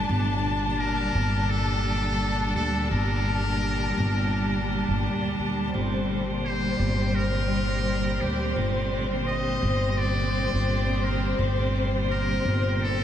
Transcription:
0.00 13.04 G3 medium
0.00 5.70 D4 medium
0.00 5.74 A5 medium
0.09 1.12 G1 loud
0.09 0.60 A#2 medium
0.09 0.60 D3 medium
0.09 0.60 G3 medium
0.09 0.60 A3 medium
0.64 2.87 A#2 medium
0.64 2.88 D3 medium
0.64 2.88 G3 medium
0.64 2.88 A#3 medium
0.79 1.51 A#4 loud
1.15 2.53 G1 loud
1.50 2.55 A4 loud
2.55 2.87 D2 medium
2.55 2.89 A4 loud
2.91 3.94 G1 medium
2.91 3.42 A#2 medium
2.91 3.42 D3 medium
2.91 3.43 G3 medium
2.91 3.43 A#3 medium
2.91 4.99 A#4 loud
3.46 5.70 A#2 medium
3.46 5.70 D3 medium
3.46 5.70 G3 medium
3.46 5.71 A#3 medium
3.97 4.84 G1 loud
4.88 5.04 G1 medium
5.03 5.35 D2 medium
5.38 5.70 D2 medium
5.74 6.77 G1 medium
5.74 6.25 A#2 medium
5.74 6.25 D3 medium
5.74 6.25 G3 medium
5.74 6.25 A3 medium
5.74 13.04 C4 medium
5.74 13.04 C5 medium
6.28 8.52 A#2 medium
6.28 8.52 D3 medium
6.28 8.53 G3 medium
6.28 8.53 A#3 medium
6.45 7.17 C5 loud
6.79 8.18 G1 medium
7.15 8.23 A#4 loud
8.21 8.52 D2 medium
8.21 8.56 G4 medium
8.56 9.59 G1 medium
8.56 9.07 A#2 medium
8.56 9.07 D3 medium
8.56 9.07 G3 medium
8.56 9.07 A3 medium
9.11 11.34 A#2 medium
9.11 11.35 D3 medium
9.11 11.35 G3 medium
9.11 11.36 A#3 medium
9.28 9.99 D#5 loud
9.62 10.49 G1 loud
9.98 11.03 D5 loud
10.53 11.36 G1 medium
11.03 11.36 A#4 medium
11.38 12.42 G1 loud
11.38 11.89 A#2 medium
11.38 11.89 D3 medium
11.38 11.89 G3 medium
11.38 11.90 A3 medium
11.94 13.04 A#2 medium
11.94 13.04 D3 medium
11.94 13.04 G3 medium
11.94 13.04 A#3 medium
12.11 12.74 A#4 loud
12.45 13.04 G1 loud
12.74 12.83 A#4 medium
12.82 13.04 A4 loud

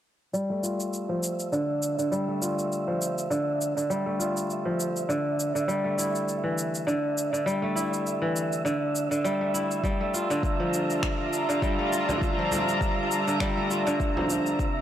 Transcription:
0.33 1.57 G3 medium
0.33 14.81 E5 medium
0.33 shaker soft
0.50 2.28 A3 medium
0.63 2.14 F4 medium
0.63 shaker medium
0.80 shaker soft
0.93 shaker soft
1.09 1.57 F3 medium
1.23 shaker medium
1.40 shaker soft
1.52 1.98 D3 medium
1.52 shaker soft
1.82 shaker medium
1.99 3.29 D3 medium
1.99 shaker soft
2.11 3.36 G3 medium
2.11 shaker soft
2.28 4.06 A3 medium
2.41 3.93 F4 medium
2.41 shaker medium
2.59 shaker soft
2.72 shaker soft
2.88 3.36 F3 medium
3.02 shaker medium
3.18 shaker soft
3.30 3.75 D3 medium
3.30 shaker soft
3.61 shaker medium
3.77 5.08 D3 medium
3.77 shaker soft
3.90 5.14 G3 medium
3.90 shaker soft
4.06 5.84 A3 medium
4.19 5.71 F4 medium
4.19 shaker medium
4.37 shaker soft
4.50 shaker soft
4.65 5.14 F3 medium
4.80 shaker medium
4.96 shaker soft
5.09 5.54 D3 medium
5.09 shaker soft
5.40 shaker medium
5.55 6.86 D3 medium
5.55 shaker soft
5.68 6.92 G3 medium
5.68 shaker soft
5.84 7.62 A3 medium
5.98 7.55 E4 medium
5.98 shaker medium
6.15 shaker soft
6.28 shaker soft
6.44 6.92 E3 medium
6.58 shaker medium
6.75 shaker soft
6.87 7.32 D3 medium
6.87 shaker soft
7.18 shaker medium
7.33 8.64 D3 medium
7.33 shaker soft
7.46 8.70 G3 medium
7.46 shaker soft
7.62 9.40 A3 medium
7.75 9.32 E4 medium
7.75 shaker medium
7.94 shaker soft
8.07 shaker soft
8.22 8.70 E3 medium
8.36 shaker medium
8.53 shaker soft
8.65 9.10 D3 medium
8.65 shaker soft
8.96 shaker medium
9.11 9.89 D3 medium
9.11 shaker soft
9.24 9.83 G3 medium
9.24 shaker soft
9.41 10.00 A3 medium
9.54 10.20 E4 medium
9.54 shaker medium
9.71 shaker soft
9.84 10.34 G3 medium
9.84 14.59 G3 medium
9.84 kick medium
9.84 shaker soft
9.95 14.81 D4 medium
10.00 11.79 A3 medium
10.14 11.65 F4 medium
10.14 14.59 F4 medium
10.14 shaker medium
10.30 11.48 D3 medium
10.30 14.81 A#5 medium
10.30 shaker soft
10.43 kick loud
10.43 shaker soft
10.60 11.52 F3 medium
10.74 shaker medium
10.90 shaker soft
11.03 finger snap medium
11.03 kick medium
11.03 shaker soft
11.33 shaker medium
11.49 12.07 D3 medium
11.49 shaker soft
11.62 12.12 G3 medium
11.62 kick medium
11.62 shaker soft
11.79 13.57 A3 medium
11.92 13.43 F4 medium
11.92 shaker medium
12.08 13.26 D3 medium
12.08 frame drum medium
12.08 shaker soft
12.22 kick medium
12.22 shaker soft
12.39 13.31 F3 medium
12.52 frame drum medium
12.52 shaker medium
12.69 shaker soft
12.81 kick medium
12.81 shaker soft
13.11 shaker medium
13.28 13.86 D3 medium
13.28 shaker soft
13.40 13.90 G3 loud
13.40 finger snap medium
13.40 kick medium
13.40 shaker soft
13.57 14.81 A3 medium
13.70 14.81 F4 medium
13.70 shaker medium
13.87 14.64 D3 loud
13.87 shaker soft
14.00 kick loud
14.00 shaker soft
14.17 14.64 F3 medium
14.17 frame drum medium
14.30 shaker medium
14.46 shaker soft
14.59 14.81 C3 medium
14.59 kick medium
14.59 shaker soft
14.78 14.81 C4 medium

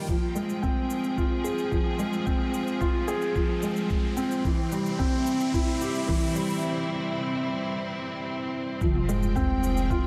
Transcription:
0.00 0.11 D#3 medium
0.00 0.09 F3 medium
0.00 0.11 G3 medium
0.00 1.37 A#3 medium
0.00 0.10 D#4 medium
0.00 1.61 F4 medium
0.00 6.19 G5 medium
0.07 4.44 F3 medium
0.07 0.35 F3 medium
0.07 kick medium
0.07 riser medium
0.07 shaker soft
0.25 10.07 C4 medium
0.35 0.62 G#3 medium
0.35 shaker medium
0.40 4.45 G#4 medium
0.49 shaker soft
0.63 0.89 C4 medium
0.63 kick medium
0.63 shaker soft
0.90 shaker medium
1.04 shaker soft
1.17 1.43 F4 medium
1.17 kick medium
1.17 shaker soft
1.44 1.71 G#4 medium
1.44 shaker medium
1.58 shaker soft
1.71 1.98 F3 medium
1.71 kick loud
1.71 shaker soft
1.99 2.15 G#3 medium
1.99 shaker medium
2.13 shaker soft
2.26 2.52 C4 medium
2.26 kick medium
2.26 shaker soft
2.54 shaker medium
2.67 shaker soft
2.81 3.07 F4 medium
2.81 kick loud
2.81 shaker soft
3.08 3.34 G#4 medium
3.08 shaker medium
3.22 shaker soft
3.35 3.62 F3 medium
3.35 kick medium
3.35 shaker soft
3.62 3.89 G#3 medium
3.62 shaker medium
3.76 shaker soft
3.90 kick loud
3.90 shaker soft
4.17 4.33 C4 medium
4.17 shaker medium
4.31 shaker soft
4.45 8.82 C3 medium
4.45 4.71 E3 medium
4.45 kick loud
4.45 shaker soft
4.64 8.81 G3 medium
4.72 4.98 G3 medium
4.72 shaker medium
4.86 shaker soft
4.90 8.82 E4 medium
4.99 5.25 C4 medium
4.99 kick loud
4.99 shaker soft
5.27 shaker medium
5.41 shaker soft
5.54 5.80 E4 medium
5.54 kick loud
5.54 shaker soft
5.81 6.07 G4 medium
5.81 shaker medium
5.95 shaker soft
6.08 6.34 E3 loud
6.08 kick loud
6.08 shaker soft
6.35 6.51 G3 medium
6.35 shaker medium
6.50 shaker soft
8.81 10.07 F1 medium
8.81 9.07 F3 medium
8.81 10.07 F3 medium
8.81 kick loud
8.81 sub drop medium
8.81 shaker soft
8.95 mid tom medium
9.09 9.35 G#3 medium
9.09 shaker medium
9.13 10.07 G5 medium
9.23 shaker soft
9.36 9.62 C4 medium
9.36 kick medium
9.36 shaker soft
9.60 10.07 G#4 medium
9.60 shaker medium
9.77 shaker soft
9.90 10.07 F4 medium
9.90 kick loud
9.90 shaker soft

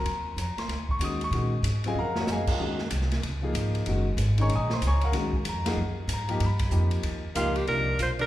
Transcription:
0.00 0.35 D#2 medium
0.00 0.24 A#5 loud
0.06 ride medium
0.36 0.55 F2 medium
0.36 hi-hat pedal medium
0.36 ride medium
0.41 0.59 A#5 medium
0.57 0.88 C6 loud
0.57 muted upright bass stroke soft
0.57 snare soft
0.57 ride medium
0.68 0.98 D2 medium
0.68 snare soft
0.68 ride medium
0.89 1.01 C#6 loud
0.89 kick medium
0.99 1.30 D#2 medium
0.99 1.18 D#3 medium
0.99 1.19 G#3 medium
0.99 1.19 C#4 medium
0.99 1.20 F#4 medium
0.99 hi-hat pedal medium
0.99 ride medium
1.04 1.22 D#6 loud
1.21 1.52 C#6 loud
1.21 ride soft
1.31 1.62 A#2 medium
1.31 1.51 D#3 medium
1.31 1.51 G#3 medium
1.31 1.51 C#4 medium
1.31 1.52 F#4 medium
1.31 ride medium
1.62 1.94 G#2 medium
1.62 hi-hat pedal medium
1.62 ride medium
1.84 1.95 C#3 medium
1.84 1.95 F#3 medium
1.84 1.96 C4 medium
1.84 1.96 F4 medium
1.84 1.98 G#4 medium
1.84 1.97 F5 medium
1.84 1.97 G#5 loud
1.84 ride soft
1.88 1.98 D#5 medium
1.95 2.26 F2 medium
1.95 2.17 F5 medium
1.95 2.17 A#5 loud
1.99 2.17 A#4 medium
1.99 2.17 F#5 medium
2.16 2.29 F#4 medium
2.16 2.29 F#5 medium
2.16 snare medium
2.20 2.30 C#5 medium
2.20 2.30 D#5 medium
2.27 2.58 F#2 medium
2.27 snare medium
2.27 hi-hat pedal medium
2.32 2.50 G#4 medium
2.32 2.50 D#5 medium
2.32 2.50 F5 medium
2.32 2.49 G#5 loud
2.47 2.61 F4 medium
2.47 2.61 C#5 medium
2.47 2.61 F5 medium
2.47 kick medium
2.47 crash medium
2.51 2.61 A#4 medium
2.58 2.90 D#2 medium
2.58 2.77 D#3 medium
2.58 2.77 G#3 medium
2.58 2.78 C#4 medium
2.58 2.78 F#4 medium
2.79 snare soft
2.91 3.22 C2 medium
2.91 hi-hat pedal medium
2.91 ride medium
3.02 snare soft
3.12 snare soft
3.12 ride medium
3.22 3.53 C#2 medium
3.22 ride medium
3.42 3.84 F3 medium
3.42 3.84 A#3 medium
3.42 3.84 D#4 medium
3.42 3.85 G#4 medium
3.54 3.85 G#1 medium
3.54 hi-hat pedal medium
3.54 ride medium
3.75 ride soft
3.86 4.16 F#1 medium
3.86 4.05 D#3 medium
3.86 4.05 G#3 medium
3.86 4.05 C#4 medium
3.86 4.05 F#4 medium
3.86 ride medium
4.17 4.48 G#1 loud
4.17 hi-hat pedal medium
4.17 ride medium
4.38 4.49 D#3 medium
4.38 4.49 G#3 medium
4.38 4.49 C#4 medium
4.38 4.49 D#4 medium
4.38 4.51 C#5 medium
4.38 4.51 A#5 medium
4.38 4.51 C#6 loud
4.38 ride medium
4.42 4.52 G#5 medium
4.49 4.80 A#1 medium
4.49 ride medium
4.55 4.72 D#5 medium
4.55 4.72 G#5 medium
4.55 4.72 A#5 medium
4.55 4.72 D#6 loud
4.70 4.83 C5 medium
4.70 4.83 C6 medium
4.70 snare medium
4.81 5.12 C#2 medium
4.81 hi-hat pedal medium
4.81 ride medium
4.87 5.04 C#5 medium
4.87 5.04 G#5 medium
4.87 5.02 A#5 medium
4.87 5.04 C#6 loud
5.01 5.11 A#4 medium
5.01 5.11 F5 medium
5.01 5.11 F#5 medium
5.01 5.10 A#5 loud
5.01 ride soft
5.12 5.44 D#2 medium
5.12 5.31 D#3 medium
5.12 5.32 G#3 medium
5.12 5.32 C#4 medium
5.12 5.32 F#4 medium
5.12 snare soft
5.12 ride medium
5.33 kick medium
5.44 5.76 F2 medium
5.44 hi-hat pedal medium
5.44 ride medium
5.49 5.67 A#5 medium
5.65 5.76 F3 medium
5.65 5.76 A#3 medium
5.65 5.76 D#4 medium
5.65 5.77 G#4 medium
5.65 6.07 F#5 medium
5.65 snare medium
5.65 ride medium
5.76 6.07 F#2 medium
6.07 6.39 G#2 medium
6.07 hi-hat pedal medium
6.07 ride medium
6.13 6.41 A#5 medium
6.28 6.39 F3 medium
6.28 6.39 A#3 medium
6.28 6.40 D#4 medium
6.28 6.40 G4 medium
6.28 ride soft
6.40 6.70 G2 medium
6.40 ride medium
6.45 6.91 B5 loud
6.59 kick medium
6.59 ride medium
6.70 7.02 F2 medium
6.70 7.19 F3 medium
6.70 7.20 A#3 medium
6.70 7.20 D#4 medium
6.70 7.20 G4 medium
6.70 hi-hat pedal medium
6.91 ride medium
7.03 7.34 D#2 medium
7.03 ride medium
7.35 7.66 C#2 medium
7.35 7.53 F3 medium
7.35 7.55 A#3 medium
7.35 7.54 A#3 medium
7.35 7.54 D#4 medium
7.35 7.58 F4 loud
7.35 7.54 G4 medium
7.35 hi-hat pedal medium
7.35 ride medium
7.55 7.67 A#3 medium
7.55 7.68 G4 loud
7.55 ride soft
7.66 7.98 C2 medium
7.66 7.85 C3 medium
7.66 7.85 F3 medium
7.66 7.85 A#3 medium
7.66 7.97 D4 medium
7.66 7.85 D#4 medium
7.66 7.86 G4 medium
7.66 7.97 A#4 loud
7.66 ride medium
7.99 8.27 B1 medium
7.99 8.09 F4 medium
7.99 8.11 C5 medium
7.99 hi-hat pedal medium
7.99 ride medium
8.19 8.27 D#3 medium
8.19 8.27 A3 soft
8.19 8.27 D4 medium
8.19 8.27 G4 medium
8.19 8.27 A#4 medium
8.19 8.27 A#4 loud
8.19 ride soft

